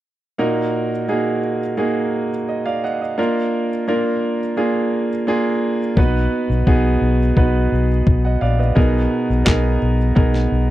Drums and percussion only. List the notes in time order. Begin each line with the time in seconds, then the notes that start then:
5.97 kick
6.67 kick
7.37 kick
8.07 kick
8.77 kick
9.47 kick, snare, clap
10.16 kick
10.34 snare